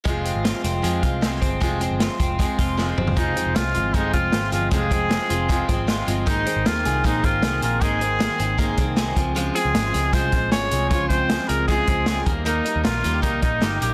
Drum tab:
HH |x-x-x-x-x-x-x-x-|x-x-x-x-x-x-----|x-x-x-x-x-x-x-x-|x-x-x-x-x-x-x-x-|
SD |----o-o-----o---|----o-------o---|----o-------o---|----o-------o---|
T2 |----------------|--------------o-|----------------|----------------|
FT |----------------|---------------o|----------------|----------------|
BD |o---------o---o-|o-----o-o-o-----|o-------o-o-----|o-o-----o-o-----|

HH |x-x-x-x-x-x-x-x-|x-x-x-x-x-x-x-x-|x-x-x-x-x-x-x-x-|x-x-x-x-x-x-x-x-|
SD |----o-o-----o---|----o-------o---|----o-o-----o---|----o-------o---|
T2 |----------------|----------------|----------------|----------------|
FT |----------------|----------------|----------------|----------------|
BD |o-------o-o-----|o-------o-o---o-|--------o-o-----|o-o-----o-o---o-|

HH |x-x-x-x-x-x-x-x-|
SD |----o-o-----o---|
T2 |----------------|
FT |----------------|
BD |--------o-o-----|